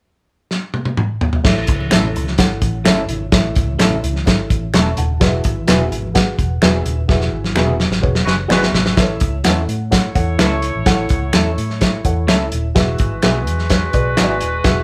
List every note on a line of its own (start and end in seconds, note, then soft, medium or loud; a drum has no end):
0.51 snare medium
0.74 high tom medium
0.85 high tom medium
0.97 mid tom medium
1.21 floor tom medium
1.33 floor tom medium
1.43 1.69 A1 medium
1.43 2.11 A2 medium
1.43 1.80 E4 medium
1.43 1.80 A4 medium
1.43 1.80 C#5 medium
1.43 1.80 E5 medium
1.43 kick loud
1.43 snare loud
1.43 crash medium
1.67 1.88 C#2 medium
1.67 kick medium
1.67 closed hi-hat medium
1.80 high conga medium
1.90 2.16 A1 medium
1.90 2.06 A3 medium
1.90 2.06 C#4 medium
1.90 2.27 E4 medium
1.90 2.07 E4 medium
1.90 2.27 A4 medium
1.90 2.07 A4 medium
1.90 2.27 C#5 medium
1.90 2.27 E5 medium
1.90 finger snap medium
1.90 snare loud
1.90 closed hi-hat medium
2.02 low conga medium
2.15 2.36 C#2 medium
2.15 closed hi-hat medium
2.15 muted conga soft
2.24 snare soft
2.24 high conga medium
2.38 2.59 G#1 medium
2.38 2.74 E4 medium
2.38 2.74 A4 medium
2.38 2.74 C#5 medium
2.38 2.75 F#5 medium
2.38 kick medium
2.38 snare loud
2.38 closed hi-hat medium
2.38 muted conga soft
2.61 2.82 A1 medium
2.61 kick medium
2.61 closed hi-hat medium
2.61 muted conga soft
2.61 high conga soft
2.84 3.06 G1 medium
2.84 3.00 A3 medium
2.84 3.00 C#4 medium
2.84 3.21 E4 medium
2.84 3.01 E4 medium
2.84 3.21 A4 medium
2.84 3.01 A4 medium
2.84 3.21 C#5 medium
2.84 3.21 E5 medium
2.84 finger snap medium
2.84 snare loud
2.84 closed hi-hat medium
2.84 muted conga soft
2.84 high conga medium
3.09 3.29 G#1 medium
3.09 closed hi-hat medium
3.09 muted conga soft
3.09 low conga medium
3.32 3.52 A1 medium
3.32 3.99 A2 medium
3.32 3.68 E4 medium
3.32 3.68 A4 medium
3.32 3.68 C#5 medium
3.32 3.69 E5 medium
3.32 kick loud
3.32 snare loud
3.32 closed hi-hat medium
3.32 muted conga soft
3.55 3.76 C#2 medium
3.55 kick medium
3.55 closed hi-hat medium
3.55 muted conga soft
3.68 high conga medium
3.78 4.00 A1 medium
3.78 3.94 A3 medium
3.78 3.95 C#4 medium
3.78 4.15 E4 medium
3.78 3.95 E4 medium
3.78 4.15 A4 medium
3.78 3.95 A4 medium
3.78 4.15 C#5 medium
3.78 4.15 E5 medium
3.78 finger snap medium
3.78 snare loud
3.78 closed hi-hat medium
3.90 low conga medium
4.03 4.23 C#2 medium
4.03 closed hi-hat medium
4.03 muted conga soft
4.13 snare soft
4.13 high conga medium
4.25 4.47 G#1 medium
4.25 4.62 E4 medium
4.25 4.62 A4 medium
4.25 4.62 C#5 medium
4.25 4.62 E5 medium
4.25 kick medium
4.25 snare loud
4.25 closed hi-hat medium
4.25 muted conga soft
4.49 4.70 A1 medium
4.49 kick medium
4.49 closed hi-hat medium
4.49 high conga soft
4.73 4.94 E1 medium
4.73 4.89 A3 medium
4.73 4.89 C#4 medium
4.73 4.89 E4 medium
4.73 4.90 A4 medium
4.73 4.96 A5 medium
4.73 4.96 C#6 medium
4.73 finger snap medium
4.73 snare loud
4.73 closed hi-hat medium
4.73 muted conga soft
4.73 high conga medium
4.97 5.17 D#1 medium
4.97 5.42 F#5 medium
4.97 5.42 A5 medium
4.97 closed hi-hat medium
4.97 muted conga soft
4.97 low conga medium
5.20 5.41 E1 loud
5.20 5.87 E3 medium
5.20 5.56 F#4 medium
5.20 5.57 G#4 medium
5.20 5.57 B4 medium
5.20 5.27 D5 medium
5.20 kick loud
5.20 snare loud
5.20 closed hi-hat medium
5.27 5.60 E5 medium
5.44 5.65 G#1 medium
5.44 kick medium
5.44 closed hi-hat medium
5.44 muted conga soft
5.56 high conga medium
5.67 5.88 E1 medium
5.67 5.83 F#3 medium
5.67 5.83 B3 medium
5.67 5.83 E4 medium
5.67 6.03 F#4 medium
5.67 6.03 G#4 medium
5.67 5.84 G#4 medium
5.67 6.04 B4 medium
5.67 6.04 E5 medium
5.67 finger snap medium
5.67 snare loud
5.67 closed hi-hat medium
5.67 muted conga soft
5.78 low conga medium
5.92 6.31 G#1 medium
5.92 closed hi-hat medium
5.92 muted conga soft
6.02 high conga medium
6.14 6.50 F#4 medium
6.14 6.50 G#4 medium
6.14 6.50 B4 medium
6.14 6.51 F#5 medium
6.14 kick medium
6.14 snare loud
6.14 closed hi-hat medium
6.38 6.59 E1 loud
6.38 kick medium
6.38 closed hi-hat medium
6.38 high conga soft
6.62 6.82 E1 medium
6.62 6.77 F#3 medium
6.62 6.77 B3 medium
6.62 6.78 E4 medium
6.62 6.98 F#4 medium
6.62 6.98 G#4 medium
6.62 6.78 G#4 medium
6.62 6.98 B4 medium
6.62 6.98 E5 medium
6.62 finger snap medium
6.62 snare loud
6.62 closed hi-hat medium
6.62 muted conga soft
6.62 high conga medium
6.86 7.06 D#1 medium
6.86 closed hi-hat medium
6.86 muted conga soft
6.86 low conga medium
7.08 7.29 E1 loud
7.08 7.76 E3 medium
7.08 7.44 F#4 medium
7.08 7.45 G#4 medium
7.08 7.45 B4 medium
7.08 7.45 E5 medium
7.08 kick loud
7.08 snare medium
7.08 muted conga soft
7.21 snare soft
7.33 7.53 G#1 medium
7.44 snare medium
7.44 high conga medium
7.55 7.86 E1 medium
7.55 7.71 F#3 medium
7.55 7.71 B3 medium
7.55 7.72 E4 medium
7.55 7.92 F#4 medium
7.55 7.92 G#4 medium
7.55 7.72 G#4 medium
7.55 7.92 B4 medium
7.55 7.92 E5 medium
7.55 finger snap medium
7.55 snare medium
7.55 muted conga soft
7.67 low conga medium
7.80 snare medium
7.80 muted conga soft
7.91 8.01 G#1 medium
7.91 snare medium
7.91 high conga medium
8.01 8.23 E1 medium
8.01 8.38 F#4 medium
8.01 8.38 G#4 medium
8.01 8.39 B4 medium
8.01 8.39 C#5 medium
8.01 kick medium
8.01 muted conga soft
8.15 snare medium
8.25 8.46 F#1 medium
8.25 8.33 G#3 medium
8.25 8.33 F#4 medium
8.25 8.33 B4 medium
8.25 snare medium
8.25 muted conga soft
8.25 high conga soft
8.48 8.70 G1 medium
8.48 8.65 F#3 medium
8.48 8.95 G#3 medium
8.48 8.65 B3 medium
8.48 8.66 E4 medium
8.48 8.85 F#4 medium
8.48 8.95 F#4 medium
8.48 8.85 G#4 medium
8.48 8.66 G#4 medium
8.48 8.86 B4 medium
8.48 8.95 B4 medium
8.48 8.55 D5 medium
8.48 finger snap medium
8.48 snare medium
8.48 muted conga soft
8.48 high conga medium
8.55 8.89 E5 medium
8.63 snare medium
8.73 8.94 G#1 medium
8.73 snare medium
8.73 muted conga soft
8.73 low conga medium
8.86 snare medium
8.97 9.17 A1 medium
8.97 9.64 A2 medium
8.97 9.33 E4 loud
8.97 9.33 A4 medium
8.97 9.03 B4 medium
8.97 9.33 E5 loud
8.97 kick loud
8.97 snare loud
8.97 closed hi-hat medium
9.03 9.36 C#5 medium
9.20 9.41 C#2 medium
9.20 kick medium
9.20 closed hi-hat medium
9.43 9.65 E2 medium
9.43 9.60 A3 medium
9.43 9.60 C#4 medium
9.43 9.80 E4 medium
9.43 9.60 E4 medium
9.43 9.80 A4 medium
9.43 9.60 A4 medium
9.43 9.50 B4 medium
9.43 9.81 F#5 medium
9.43 finger snap medium
9.43 snare medium
9.43 closed hi-hat medium
9.50 9.83 C#5 medium
9.68 10.08 A2 medium
9.68 closed hi-hat medium
9.90 12.48 A3 medium
9.90 10.09 E4 medium
9.90 12.48 E4 medium
9.90 10.09 A4 medium
9.90 10.10 C#5 medium
9.90 12.48 C#5 medium
9.90 10.10 F#5 medium
9.90 kick medium
9.90 snare loud
9.90 closed hi-hat medium
10.14 10.36 E2 medium
10.14 10.33 E4 medium
10.14 10.33 A4 medium
10.14 10.33 C#5 medium
10.14 10.33 F#5 medium
10.14 kick medium
10.14 closed hi-hat medium
10.38 10.69 C#2 medium
10.38 10.54 A3 medium
10.38 10.54 C#4 medium
10.38 10.74 E4 medium
10.38 10.55 E4 medium
10.38 10.75 A4 medium
10.38 10.55 A4 medium
10.38 10.45 B4 medium
10.38 10.75 E5 medium
10.38 finger snap medium
10.38 snare loud
10.38 closed hi-hat medium
10.44 10.78 C#5 medium
10.62 closed hi-hat medium
10.75 10.85 A1 medium
10.85 11.06 A1 medium
10.85 11.53 A2 medium
10.85 11.22 E4 loud
10.85 11.22 A4 medium
10.85 11.22 C#5 medium
10.85 11.23 F#5 loud
10.85 kick loud
10.85 snare loud
10.85 closed hi-hat medium
11.09 11.30 C#2 medium
11.09 kick medium
11.09 closed hi-hat medium
11.32 11.54 E2 medium
11.32 11.48 A3 medium
11.32 11.49 C#4 medium
11.32 11.69 E4 medium
11.32 11.49 E4 medium
11.32 11.70 A4 medium
11.32 11.49 A4 medium
11.32 11.70 C#5 medium
11.32 11.70 E5 medium
11.32 finger snap medium
11.32 snare loud
11.32 closed hi-hat medium
11.58 11.98 A2 medium
11.58 closed hi-hat medium
11.70 snare soft
11.80 11.99 E4 medium
11.80 11.99 A4 medium
11.80 11.99 C#5 medium
11.80 11.99 E5 medium
11.80 kick medium
11.80 snare medium
11.80 closed hi-hat medium
12.04 12.29 E2 medium
12.04 12.22 E4 medium
12.04 12.23 A4 medium
12.04 12.23 C#5 medium
12.04 12.23 F#5 medium
12.04 kick medium
12.04 closed hi-hat medium
12.27 12.49 C#2 medium
12.27 12.43 A3 medium
12.27 12.43 C#4 medium
12.27 12.64 E4 medium
12.27 12.44 E4 medium
12.27 12.64 A4 medium
12.27 12.44 A4 medium
12.27 12.64 C#5 medium
12.27 12.64 E5 medium
12.27 finger snap medium
12.27 snare loud
12.27 closed hi-hat medium
12.52 12.72 D#1 medium
12.52 closed hi-hat medium
12.75 12.96 E1 medium
12.75 13.42 E3 medium
12.75 14.84 G#3 medium
12.75 13.11 F#4 medium
12.75 14.84 F#4 medium
12.75 13.11 G#4 medium
12.75 13.11 B4 medium
12.75 14.84 B4 medium
12.75 13.12 E5 loud
12.75 kick loud
12.75 snare loud
12.75 closed hi-hat medium
12.98 13.20 G#1 medium
12.98 kick medium
12.98 closed hi-hat medium
13.22 13.48 B1 medium
13.22 13.38 F#3 medium
13.22 13.38 B3 medium
13.22 13.38 E4 medium
13.22 13.59 F#4 medium
13.22 13.59 G#4 medium
13.22 13.39 G#4 medium
13.22 13.59 B4 medium
13.22 13.59 E5 medium
13.22 finger snap medium
13.22 snare loud
13.22 closed hi-hat medium
13.47 13.87 E2 medium
13.47 closed hi-hat medium
13.59 snare soft
13.70 13.88 F#4 medium
13.70 13.88 G#4 medium
13.70 13.88 B4 medium
13.70 13.89 C#5 medium
13.70 kick medium
13.70 snare loud
13.70 closed hi-hat medium
13.93 14.14 B1 medium
13.93 14.12 F#4 medium
13.93 14.12 G#4 medium
13.93 14.12 B4 medium
13.93 14.12 D5 medium
13.93 kick medium
13.93 closed hi-hat medium
14.17 14.42 G#1 medium
14.17 14.33 F#3 medium
14.17 14.33 B3 medium
14.17 14.33 E4 medium
14.17 14.53 F#4 medium
14.17 14.53 G#4 medium
14.17 14.33 G#4 medium
14.17 14.54 B4 medium
14.17 14.24 C#5 medium
14.17 finger snap medium
14.17 snare loud
14.17 closed hi-hat medium
14.24 14.57 D5 medium
14.41 14.62 D#1 medium
14.41 closed hi-hat medium
14.64 14.84 E1 medium
14.64 14.84 E3 medium
14.64 14.84 F#4 loud
14.64 14.84 G#4 medium
14.64 14.84 B4 medium
14.64 14.84 E5 loud
14.64 kick loud
14.64 snare loud
14.64 closed hi-hat medium